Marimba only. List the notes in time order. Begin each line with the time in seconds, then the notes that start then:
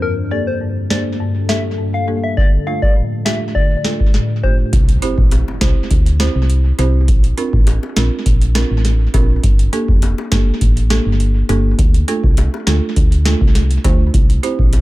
0.02 G2
0.31 A#3 D4 G4 A4
0.61 G2
0.90 A#3 D4 G4 C5
1.20 G2
1.49 A#3 D4 G4 A4
1.78 G2
2.08 A#3 D4 G4 A4
2.38 D3
2.67 A3 D4 F4 A4
2.96 A2
3.26 A3 D4 F4 G4
3.55 D3
3.85 A3 D4 F4 A4
4.14 A2
4.44 A3 D4 F4 G4
5.02 C4 E4 G4 C5
5.61 C4 E4 G4 C5
6.20 C4 E4 G4 C5
6.79 C4 E4 G4 C5
7.38 C4 D4 F4 A#4
7.97 C4 D4 F4 A#4
8.55 C4 D4 F4 A#4
9.14 C4 D4 F4 A#4
9.73 A#3 D4 G4 A4
10.32 A#3 D4 G4 A4
10.90 A#3 D4 G4 A4
11.49 A#3 D4 G4 A4
12.08 A3 D4 F4 A4
12.67 A3 D4 F4 A4
13.25 A3 D4 F4 A4
13.84 A3 D4 F4 C5
14.43 C4 E4 G4 C5